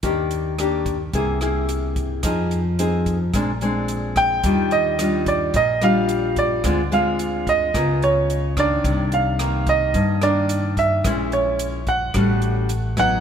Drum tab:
HH |xxxxxxxx|xxxxxxxx|xxxxxxxx|xxxxxxxx|
SD |--r--r--|r---r--r|--r--r--|r---r--r|
BD |o--oo--o|o--oo--o|o--oo--o|o--oo--o|

HH |xxxxxxxx|xxxxxxxx|
SD |--r--r--|r---r--r|
BD |o--oo--o|o--oo--o|